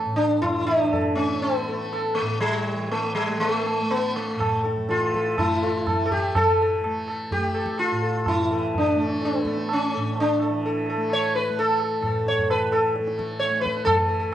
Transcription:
0.00 0.60 E3 medium
0.00 1.14 A3 medium
0.00 0.16 C#4 medium
0.05 2.21 A2 medium
0.16 0.41 D4 medium
0.42 0.65 E4 loud
0.42 tabla na medium
0.42 tabla ge medium
0.60 2.75 E3 medium
0.67 1.15 D4 loud
0.93 1.16 A4 soft
0.93 tabla tin medium
0.93 tabla ge medium
1.14 1.68 A3 medium
1.14 1.42 C#4 medium
1.42 2.20 B3 medium
1.42 tabla na medium
1.68 3.28 A3 medium
1.68 1.91 A4 soft
1.93 2.16 A4 soft
1.93 tabla na medium
2.15 2.40 A3 medium
2.21 4.35 A2 medium
2.40 2.91 G3 medium
2.40 tabla tin medium
2.75 4.88 E3 medium
2.91 3.14 A3 medium
2.91 tabla tin medium
3.15 3.40 G3 medium
3.15 tabla na medium
3.28 3.82 A3 medium
3.40 3.92 A3 medium
3.40 tabla na medium
3.67 tabla na medium
3.82 5.40 A3 medium
3.91 4.14 B3 loud
3.91 tabla tin medium
4.16 4.61 A3 medium
4.16 tabla na medium
4.36 7.91 A2 medium
4.36 4.62 A4 soft
4.40 tabla na medium
4.40 tabla ge medium
4.63 4.87 A4 soft
4.63 tabla te medium
4.77 tabla ge medium
4.88 6.32 E3 medium
4.88 5.37 F4 medium
4.88 5.12 A4 soft
4.88 tabla te medium
5.01 tabla te medium
5.14 5.36 A4 soft
5.14 tabla ke medium
5.27 tabla te medium
5.38 5.95 A3 medium
5.38 6.07 E4 medium
5.38 5.60 A4 soft
5.38 tabla na medium
5.38 tabla ge medium
5.63 5.85 A4 soft
5.63 tabla te medium
5.87 6.04 A4 soft
5.87 tabla na medium
5.87 tabla ge medium
5.95 6.85 A3 medium
6.06 6.10 A4 medium
6.10 6.36 G4 medium
6.10 6.34 A4 soft
6.10 tabla ge medium
6.32 8.43 E3 medium
6.32 tabla na loud
6.32 tabla ge medium
6.36 6.60 A4 loud
6.61 6.83 A4 soft
6.84 7.38 A3 medium
6.84 tabla na medium
7.08 7.30 A4 soft
7.08 tabla na medium
7.31 7.79 G4 loud
7.31 tabla tin medium
7.31 tabla ge medium
7.38 8.95 A3 medium
7.55 7.77 A4 soft
7.55 tabla na medium
7.66 tabla ke medium
7.78 8.28 F4 medium
7.78 tabla na medium
7.91 9.96 A2 medium
8.02 8.25 A4 soft
8.26 8.77 E4 medium
8.26 tabla na medium
8.26 tabla ge medium
8.43 10.48 E3 medium
8.51 8.73 A4 soft
8.74 9.05 D4 medium
8.74 tabla tin medium
8.74 tabla ge medium
8.95 9.45 A3 medium
9.01 9.22 A4 soft
9.05 9.25 C#4 medium
9.22 9.72 B3 medium
9.22 tabla te medium
9.34 tabla te medium
9.45 10.97 A3 medium
9.45 9.68 A4 soft
9.45 tabla ke medium
9.57 tabla te medium
9.69 tabla na medium
9.73 10.20 C#4 medium
9.92 10.15 A4 soft
9.92 tabla na medium
9.96 12.00 A2 medium
10.16 tabla tin medium
10.20 10.62 D4 medium
10.40 10.63 A4 soft
10.40 tabla na medium
10.49 12.49 E3 medium
10.63 10.86 A4 soft
10.63 tabla tin medium
10.86 11.10 A4 soft
10.86 tabla na medium
10.97 11.50 A3 medium
11.10 11.35 C#5 loud
11.10 tabla na medium
11.35 11.58 B4 medium
11.50 13.00 A3 medium
11.56 11.79 A4 medium
11.56 tabla tin medium
11.80 12.03 A4 soft
11.80 tabla na medium
12.01 14.34 A2 medium
12.01 tabla na medium
12.01 tabla ge medium
12.05 12.25 A4 soft
12.26 12.50 C#5 medium
12.26 tabla te medium
12.38 tabla ge soft
12.49 13.87 E3 medium
12.49 12.73 B4 medium
12.49 tabla na medium
12.72 12.93 A4 medium
12.72 tabla na medium
12.96 tabla te medium
13.00 13.50 A3 medium
13.07 tabla te medium
13.18 13.39 A4 soft
13.18 tabla ke medium
13.31 tabla te medium
13.39 13.61 C#5 medium
13.39 tabla te medium
13.50 14.34 A3 medium
13.54 tabla te medium
13.61 13.84 B4 medium
13.66 tabla ke medium
13.77 tabla te soft
13.85 14.34 E3 medium
13.85 13.95 A4 medium
13.85 tabla na loud
13.85 tabla ge loud
13.96 14.07 A4 soft
14.08 14.18 A4 soft
14.19 14.31 A4 soft

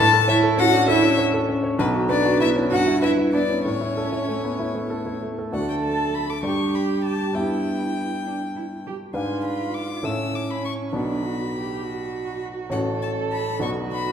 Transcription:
0.00 1.75 A2 loud
0.00 0.28 A5 loud
0.13 0.37 A4 medium
0.28 0.61 E4 loud
0.28 0.52 C#5 medium
0.28 0.37 E5 loud
0.43 0.67 A4 medium
0.57 0.82 C#4 medium
0.57 0.88 F#4 loud
0.57 0.88 F#5 loud
0.72 0.88 D4 medium
0.88 1.18 E4 loud
0.88 1.12 A4 medium
0.88 1.18 E5 loud
1.03 1.27 C#4 medium
1.18 1.42 C#5 medium
1.34 1.58 A4 medium
1.49 1.73 C#4 medium
1.63 1.79 C#5 medium
1.78 2.68 B1 medium
1.78 2.10 B3 medium
1.78 1.87 B4 loud
1.94 2.19 F#4 medium
2.09 2.39 D4 loud
2.09 2.34 B4 medium
2.09 2.40 D5 loud
2.25 2.50 F#4 medium
2.40 2.65 B3 medium
2.40 2.48 E4 medium
2.40 2.49 E5 loud
2.56 2.71 C#4 medium
2.71 3.62 G2 medium
2.71 3.01 F#4 loud
2.71 3.02 F#5 loud
2.87 3.12 E4 medium
3.02 3.33 E4 medium
3.02 3.27 B4 medium
3.02 3.10 E5 loud
3.17 3.43 E4 medium
3.33 3.58 B3 medium
3.33 3.42 D4 medium
3.33 3.64 D5 loud
3.49 3.65 C#4 soft
3.64 5.50 A2 medium
3.64 5.19 C#4 medium
3.64 5.20 C#5 medium
3.81 4.06 E4 medium
3.97 4.22 A4 medium
4.12 4.37 E4 medium
4.29 4.53 A3 medium
4.44 4.59 B3 medium
4.59 4.85 E4 medium
4.75 5.00 A3 medium
4.90 5.16 A4 medium
5.06 5.32 E4 medium
5.23 5.48 A3 medium
5.38 5.54 A4 medium
5.52 6.41 D2 medium
5.52 6.41 A3 medium
5.52 6.41 F#4 soft
5.52 6.40 A4 medium
5.52 6.42 D5 soft
5.52 5.68 F#5 medium
5.70 5.76 G5 medium
5.84 6.16 A5 medium
6.14 6.31 B5 medium
6.30 6.44 D6 medium
6.42 7.31 G2 medium
6.42 7.31 G3 soft
6.42 7.32 G4 soft
6.42 7.37 G4 medium
6.42 7.32 D5 soft
6.42 6.76 C#6 medium
6.74 7.04 B5 medium
7.05 7.36 A5 medium
7.33 9.10 G2 medium
7.33 9.10 B3 soft
7.33 8.26 E4 medium
7.33 9.11 G4 soft
7.33 9.11 E5 soft
7.33 8.85 G5 medium
8.26 8.34 D4 medium
8.56 8.64 E4 medium
8.87 8.95 G4 medium
9.13 10.01 G#2 medium
9.13 10.01 D4 soft
9.13 10.03 F4 medium
9.13 10.01 B4 soft
9.13 10.02 F5 soft
9.13 9.43 G#5 medium
9.45 9.76 B5 medium
9.74 10.07 D6 medium
10.03 10.90 A2 medium
10.03 10.90 C#4 soft
10.03 10.96 C#4 medium
10.03 10.91 A4 soft
10.03 10.91 E5 soft
10.03 10.36 E6 medium
10.35 10.52 D6 medium
10.50 10.64 B5 medium
10.65 10.73 C#6 medium
10.93 12.67 B1 medium
10.93 12.68 B3 soft
10.93 11.26 D4 medium
10.93 12.68 F#4 soft
10.93 12.68 D5 soft
10.93 12.40 B5 medium
11.25 11.54 F#4 medium
11.55 11.86 G4 medium
11.84 12.75 F#4 medium
12.70 13.58 A1 medium
12.70 13.59 C#4 soft
12.70 13.59 F#4 soft
12.70 13.64 A4 medium
12.70 13.59 C#5 soft
12.70 12.80 F#5 medium
13.02 13.10 A5 medium
13.32 13.62 B5 medium
13.59 14.12 B1 medium
13.59 14.12 B3 soft
13.59 14.12 F#4 medium
13.59 14.12 D5 soft
13.59 13.70 C#6 medium
13.92 14.12 B5 medium

